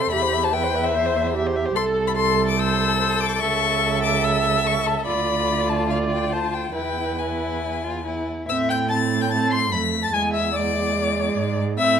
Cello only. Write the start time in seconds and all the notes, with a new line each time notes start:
0.12 E2
1.75 C2
3.41 C#2
5.07 D2
6.76 E2
8.49 A2
9.73 F2
10.13 E2
11.37 G#2
11.78 A2